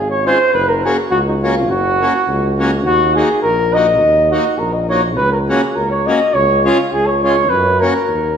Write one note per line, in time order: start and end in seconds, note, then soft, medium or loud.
0.00 0.32 G#1 medium
0.00 0.10 G#4 loud
0.11 0.25 C#5 medium
0.25 0.38 G#3 medium
0.25 0.38 C#4 soft
0.25 0.38 F4 medium
0.25 0.52 C5 medium
0.53 0.91 F#1 medium
0.53 0.70 B4 loud
0.68 0.84 A#4 medium
0.85 0.97 A#3 medium
0.85 0.97 C#4 medium
0.85 0.97 F#4 medium
0.85 0.97 G#4 medium
1.11 1.70 C#2 medium
1.11 1.18 F#4 loud
1.27 1.34 D#4 medium
1.42 1.55 A#3 medium
1.42 1.55 C#4 soft
1.42 1.67 F4 medium
1.42 1.55 F#4 medium
1.69 2.07 F#1 medium
1.69 2.55 F#4 loud
2.01 2.13 A#3 medium
2.01 2.13 C#4 soft
2.01 2.13 F#4 medium
2.28 2.86 C#2 medium
2.58 2.71 A#3 medium
2.58 2.71 C#4 medium
2.58 2.71 F#4 medium
2.85 3.23 D#2 medium
2.85 3.14 F#4 loud
3.15 3.28 A#3 medium
3.15 3.29 D#4 soft
3.15 3.29 F#4 soft
3.15 3.41 G#4 medium
3.42 4.02 A#1 medium
3.42 3.75 A#4 loud
3.74 3.86 A#3 medium
3.74 3.87 D#4 soft
3.74 3.87 F#4 medium
3.74 4.31 D#5 loud
4.00 4.38 D#2 medium
4.31 4.44 A#3 medium
4.31 4.44 D#4 medium
4.31 4.60 F#4 medium
4.31 4.45 F#4 medium
4.58 5.18 A#1 medium
4.58 4.75 A#4 medium
4.73 4.88 D#5 medium
4.89 5.02 A#3 soft
4.89 5.02 D#4 soft
4.89 5.03 F#4 soft
4.89 5.02 C#5 medium
5.17 5.55 C#2 medium
5.17 5.32 B4 loud
5.32 5.40 A#4 medium
5.48 5.61 A#3 medium
5.48 5.61 C#4 soft
5.48 5.61 F#4 medium
5.48 5.77 G#4 medium
5.75 6.13 C#2 medium
5.75 5.90 A#4 medium
5.91 6.08 C#5 medium
6.06 6.19 A#3 medium
6.06 6.20 C#4 soft
6.06 6.20 F#4 medium
6.06 6.35 D#5 loud
6.34 6.72 C#2 loud
6.34 6.64 C#5 loud
6.65 6.77 G#3 medium
6.65 6.77 C#4 soft
6.65 6.93 F4 medium
6.65 6.78 F4 medium
6.92 7.52 C#2 medium
6.92 7.08 G#4 loud
7.06 7.22 C#5 medium
7.23 7.36 G#3 soft
7.23 7.36 C#4 medium
7.23 7.36 F4 medium
7.23 7.51 C#5 loud
7.49 7.88 F#2 loud
7.49 7.81 B4 loud
7.80 7.93 A#3 medium
7.80 7.93 C#4 medium
7.80 7.94 F#4 medium
7.80 8.37 A#4 medium
8.08 8.37 D#2 medium